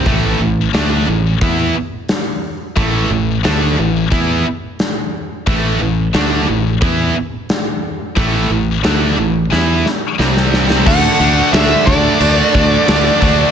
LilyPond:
<<
  \new Staff \with { instrumentName = "Lead electric guitar" } { \time 4/4 \key a \minor \tempo 4 = 89 r1 | r1 | r1 | r1 |
fis''4 e''8 d''2~ d''8 | }
  \new Staff \with { instrumentName = "Distorted electric guitar" } { \time 4/4 \key a \minor r1 | r1 | r1 | r1 |
<d a d'>8 <d a d'>8 <d a d'>8 <d a d'>8 <d a d'>8 <d a d'>8 <d a d'>8 <d a d'>8 | }
  \new Staff \with { instrumentName = "Distorted electric guitar" } { \clef bass \time 4/4 \key a \minor <a, e a>8 <a, e>8 <d a d'>8 <a, e>8 <e b e'>8 r4. | <a, e a>8 <a, e>8 <d a d'>8 <a, e>8 <e b e'>8 r4. | <a, e a>8 <a, e>8 <d a d'>8 <a, e>8 <e b e'>8 r4. | <a, e a>8 <a, e>8 <d a d'>8 <a, e>8 <e b e'>8 r8 <c g c'>4 |
<d a d'>8 <d a d'>8 <d a d'>8 <d a d'>8 <d a d'>8 <d a d'>8 <d a d'>8 <d a d'>8 | }
  \new Staff \with { instrumentName = "Distorted electric guitar" } { \clef bass \time 4/4 \key a \minor <a, e a>8 <a, e>8 <d a d'>8 <a, e>8 <e b e'>8 r4. | <a, e a>8 <a, e>8 <d a d'>8 <a, e>8 <e b e'>8 r4. | <a, e a>8 <a, e>8 <d a d'>8 <a, e>8 <e b e'>8 r4. | <a, e a>8 <a, e>8 <d a d'>8 <a, e>8 <e b e'>8 r8 <c g c'>4 |
<d a d'>8 <d a d'>8 <d a d'>8 <d a d'>8 <d a d'>8 <d a d'>8 <d a d'>8 <d a d'>8 | }
  \new Staff \with { instrumentName = "Fingered electric bass" } { \clef bass \time 4/4 \key a \minor a,,8 a,,8 d,8 a,,8 e,8 r4. | a,,8 a,,8 d,8 a,,8 e,8 r4. | a,,8 a,,8 d,8 a,,8 e,8 r4. | a,,8 a,,8 d,8 a,,8 e,8 r8 c,4 |
d,8 d,8 d,8 d,8 d,8 d,8 d,8 d,8 | }
  \new DrumStaff \with { instrumentName = "Drums" } \drummode { \time 4/4 <hho bd>4 <hho sn>4 <hho bd>4 <hho sn>4 | <hho bd>4 <hho sn>4 <hho bd>4 <hho sn>4 | <hho bd>4 <hho sn>4 <hho bd>4 <hho sn>4 | <hho bd>4 <hho sn>4 sn8 sn8 sn16 sn16 sn16 sn16 |
<cymc bd>8 cymc8 <cymc sn>8 <cymc bd>8 cymc8 <cymc bd>8 <cymc sn>8 <cymc bd>8 | }
>>